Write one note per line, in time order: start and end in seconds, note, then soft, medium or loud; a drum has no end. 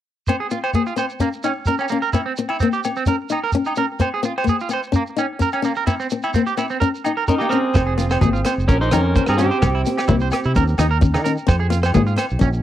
0.27 0.47 C4 medium
0.27 0.35 C5 medium
0.27 low agogo medium
0.27 shekere medium
0.40 0.46 G#4 medium
0.50 0.70 C4 medium
0.50 0.58 F4 medium
0.50 shekere soft
0.64 0.70 C5 medium
0.64 low agogo medium
0.73 0.93 A#3 medium
0.73 0.82 G#4 medium
0.73 shekere medium
0.86 0.93 F4 medium
0.86 shekere soft
0.96 1.16 C4 medium
0.96 1.04 C5 medium
0.96 low agogo medium
0.96 shekere soft
1.09 shekere soft
1.20 1.28 A#3 medium
1.20 1.39 C#4 medium
1.20 shekere medium
1.33 shekere soft
1.43 1.51 C#4 medium
1.43 1.63 D#4 medium
1.43 low agogo medium
1.43 shekere medium
1.66 1.87 C#4 medium
1.66 1.74 A#4 medium
1.66 shekere medium
1.79 1.85 C#4 medium
1.79 low agogo medium
1.79 shekere soft
1.88 1.97 A#3 medium
1.88 2.10 C#4 medium
1.88 shekere medium
2.02 2.09 A#4 medium
2.02 shekere soft
2.13 2.33 C4 medium
2.13 2.20 E4 medium
2.13 low agogo medium
2.13 shekere medium
2.26 2.32 C4 medium
2.37 2.57 C4 medium
2.37 shekere medium
2.49 2.56 E4 medium
2.49 low agogo medium
2.60 2.81 A#3 medium
2.60 2.67 C4 medium
2.60 shekere medium
2.73 2.79 G4 medium
2.73 shekere soft
2.84 3.04 C4 medium
2.84 low agogo medium
2.84 shekere medium
2.96 3.03 C4 medium
2.96 shekere soft
3.06 3.26 C#4 medium
3.06 3.15 A#4 medium
3.06 shekere medium
3.30 3.49 D#4 medium
3.30 3.39 D#4 medium
3.30 low agogo medium
3.30 shekere medium
3.44 3.50 A#4 medium
3.52 3.73 C#4 medium
3.52 shekere medium
3.65 3.73 D#4 medium
3.65 low agogo soft
3.65 shekere soft
3.76 3.96 C#4 medium
3.76 3.85 A#4 medium
3.76 shekere medium
4.00 4.19 C4 medium
4.00 4.08 C5 medium
4.00 low agogo medium
4.00 shekere medium
4.14 4.20 G#4 medium
4.23 4.42 C4 medium
4.23 4.32 F4 medium
4.23 shekere medium
4.38 4.44 C5 medium
4.38 low agogo medium
4.44 4.64 A#3 medium
4.44 shekere medium
4.49 4.56 G#4 medium
4.60 4.67 F4 medium
4.60 shekere soft
4.69 4.89 C4 medium
4.69 low agogo medium
4.69 shekere medium
4.73 4.80 C5 medium
4.83 shekere soft
4.92 5.02 A#3 medium
4.92 5.12 C#4 medium
4.92 shekere medium
5.07 shekere soft
5.17 5.25 C#4 medium
5.17 5.36 D#4 medium
5.17 low agogo medium
5.17 shekere medium
5.39 5.59 C#4 medium
5.39 5.48 A#4 medium
5.39 shekere medium
5.52 5.60 C#4 medium
5.52 low agogo medium
5.52 shekere soft
5.62 5.72 A#3 medium
5.62 5.82 C#4 medium
5.62 shekere medium
5.76 5.83 A#4 medium
5.76 shekere soft
5.87 6.06 C4 medium
5.87 5.94 E4 medium
5.87 low agogo medium
5.87 shekere medium
6.00 6.06 C4 medium
6.00 shekere soft
6.10 6.30 C4 medium
6.10 shekere medium
6.23 6.30 E4 medium
6.23 low agogo medium
6.23 shekere soft
6.34 6.54 A#3 medium
6.34 6.41 C4 medium
6.34 shekere medium
6.47 6.53 G4 medium
6.47 shekere soft
6.57 6.76 C4 medium
6.57 6.65 E4 medium
6.57 low agogo medium
6.57 shekere medium
6.70 6.76 C4 medium
6.70 shekere soft
6.80 7.00 C#4 medium
6.80 6.87 A#4 medium
6.80 shekere medium
6.95 shekere soft
7.04 7.11 D#4 medium
7.04 7.24 D#4 medium
7.04 low agogo medium
7.04 shekere medium
7.17 7.23 A#4 medium
7.28 7.47 C#4 medium
7.28 7.40 D#4 medium
7.28 7.38 A#4 medium
7.28 shekere medium
7.38 7.49 A#3 medium
7.38 7.46 D#4 medium
7.38 7.49 G4 medium
7.38 low agogo medium
7.38 shekere soft
7.49 8.63 C4 medium
7.49 7.71 C#4 medium
7.49 8.67 G#4 medium
7.49 7.57 A#4 medium
7.49 shekere medium
7.74 8.18 F1 medium
7.74 7.94 C4 medium
7.74 7.81 C5 medium
7.74 kick medium
7.74 cross-stick medium
7.74 muted conga soft
7.74 low agogo medium
7.74 shekere medium
7.86 7.93 G#4 medium
7.98 8.17 C4 medium
7.98 8.05 F4 medium
7.98 closed hi-hat soft
7.98 muted conga soft
7.98 shekere medium
8.10 8.17 C5 medium
8.10 cross-stick medium
8.10 low agogo medium
8.10 shekere soft
8.21 8.43 G#1 medium
8.21 8.41 A#3 medium
8.21 8.28 G#4 medium
8.21 kick medium
8.21 high conga medium
8.21 shekere medium
8.33 8.39 F4 medium
8.33 shekere soft
8.45 8.64 C4 medium
8.45 8.52 C5 medium
8.45 cross-stick medium
8.45 closed hi-hat soft
8.45 low agogo medium
8.45 shekere medium
8.58 8.68 F1 medium
8.58 shekere soft
8.68 8.90 A#1 medium
8.68 8.80 C#4 medium
8.68 8.75 C#4 medium
8.68 8.87 C#4 medium
8.68 8.80 A#4 medium
8.68 kick medium
8.68 muted conga soft
8.68 shekere medium
8.81 8.91 D#4 medium
8.81 8.94 C5 medium
8.81 shekere soft
8.91 9.14 F2 medium
8.91 9.26 C#4 medium
8.91 9.11 D#4 medium
8.91 8.99 A#4 medium
8.91 9.28 A#4 medium
8.91 cross-stick medium
8.91 closed hi-hat soft
8.91 high conga medium
8.91 low agogo medium
8.91 shekere medium
9.15 9.35 C#4 medium
9.15 9.22 C5 medium
9.15 kick medium
9.15 high conga medium
9.15 shekere medium
9.26 9.49 G2 medium
9.26 9.36 C4 medium
9.26 9.40 G#4 medium
9.26 9.34 A#4 medium
9.26 cross-stick medium
9.26 low agogo medium
9.37 10.74 C4 medium
9.37 9.57 C#4 medium
9.37 9.46 C#4 medium
9.37 10.74 G4 medium
9.37 closed hi-hat soft
9.37 muted conga soft
9.37 shekere medium
9.51 9.57 C5 medium
9.51 shekere soft
9.62 9.84 C2 medium
9.62 9.81 C4 medium
9.62 9.68 G4 medium
9.62 kick medium
9.62 cross-stick medium
9.62 low agogo medium
9.62 shekere medium
9.75 9.81 E4 medium
9.86 10.05 C4 medium
9.86 closed hi-hat soft
9.86 muted conga soft
9.86 shekere medium
9.98 10.03 G4 medium
9.98 cross-stick medium
9.98 low agogo medium
10.08 10.30 C2 medium
10.08 10.28 A#3 medium
10.08 10.15 E4 medium
10.08 kick medium
10.08 high conga medium
10.08 low conga medium
10.08 shekere medium
10.20 10.27 C5 medium
10.20 shekere soft
10.31 10.51 C4 medium
10.31 10.39 G4 medium
10.31 cross-stick medium
10.31 closed hi-hat soft
10.31 low agogo medium
10.31 shekere medium
10.44 10.55 C3 medium
10.44 10.51 E4 medium
10.44 shekere soft
10.55 10.77 D#2 medium
10.55 10.74 C#4 medium
10.55 10.62 A#4 medium
10.55 kick medium
10.55 muted conga soft
10.55 shekere medium
10.68 shekere soft
10.78 11.17 D#2 medium
10.78 10.85 D#4 medium
10.78 10.98 D#4 medium
10.78 cross-stick medium
10.78 closed hi-hat soft
10.78 high conga medium
10.78 low agogo medium
10.78 shekere medium
10.91 10.97 A#4 medium
11.01 11.20 C#4 medium
11.01 kick medium
11.01 high conga medium
11.01 shekere medium
11.14 11.36 D#3 medium
11.14 11.20 D#4 medium
11.14 cross-stick medium
11.14 low agogo medium
11.24 11.44 C#4 medium
11.24 11.31 A#4 medium
11.24 closed hi-hat soft
11.24 muted conga soft
11.24 shekere medium
11.37 shekere soft
11.47 11.91 F2 medium
11.47 11.66 C4 medium
11.47 11.55 C5 medium
11.47 kick medium
11.47 cross-stick medium
11.47 muted conga soft
11.47 low agogo medium
11.47 shekere medium
11.60 11.66 G#4 medium
11.70 11.89 C4 medium
11.70 11.77 F4 medium
11.70 closed hi-hat soft
11.70 muted conga soft
11.70 shekere medium
11.83 11.89 C5 medium
11.83 cross-stick medium
11.83 low agogo medium
11.83 shekere soft
11.94 12.16 G#2 medium
11.94 12.13 A#3 medium
11.94 12.01 G#4 medium
11.94 kick medium
11.94 high conga medium
11.94 shekere medium
12.07 12.13 F4 medium
12.07 shekere soft
12.16 12.36 C4 medium
12.16 12.24 C5 medium
12.16 cross-stick medium
12.16 closed hi-hat soft
12.16 low agogo medium
12.16 shekere medium
12.29 12.40 B1 medium
12.29 shekere soft
12.39 12.62 A#1 loud
12.39 12.59 C#4 medium
12.39 12.48 C#4 medium
12.39 kick medium
12.39 muted conga soft
12.39 shekere medium
12.53 shekere soft